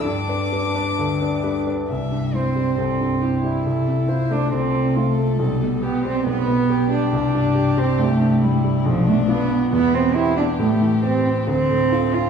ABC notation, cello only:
X:1
M:4/4
L:1/8
Q:1/4=137
K:C
V:1 name="Cello"
D6- D z | G,2 C2 C3 E- | E3 D C2 A,2 | G,2 B, C B,3 D- |
D3 C A,2 G,2 | F, A, B,2 B, C E D | A,2 C2 C3 F |]